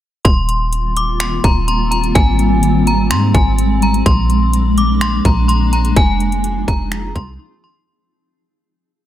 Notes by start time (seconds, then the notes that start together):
0.25 D#1 D#3 G3 A#3 C4 F4 C6, kick, closed hi-hat
0.49 closed hi-hat
0.73 closed hi-hat
0.97 D6, closed hi-hat
1.20 C6, finger snap, closed hi-hat
1.44 D#1 A#5, kick, closed hi-hat
1.68 C6, closed hi-hat
1.91 A#5, closed hi-hat
2.04 closed hi-hat
2.15 G#1 G#3 G#5, kick, closed hi-hat
2.39 closed hi-hat
2.63 closed hi-hat
2.87 A#5, closed hi-hat
3.11 G#2 C6, finger snap, closed hi-hat
3.34 G#1 G#5, kick, closed hi-hat
3.58 closed hi-hat
3.82 A#5, closed hi-hat
3.94 closed hi-hat
4.06 A#1 G#3 A#3 D4 C6, kick, closed hi-hat
4.30 closed hi-hat
4.53 closed hi-hat
4.78 D6, closed hi-hat
5.01 C6, finger snap, closed hi-hat
5.25 A#1 A#5, kick, closed hi-hat
5.48 C6, closed hi-hat
5.73 A#5, closed hi-hat
5.85 closed hi-hat
5.96 F1 F3 C4 D#4 F4 G#4 G#5, kick, closed hi-hat
6.20 closed hi-hat
6.32 closed hi-hat
6.44 closed hi-hat
6.68 F1 A#5, kick, closed hi-hat
6.92 finger snap, closed hi-hat
7.15 C2 C6, kick, closed hi-hat
7.64 C6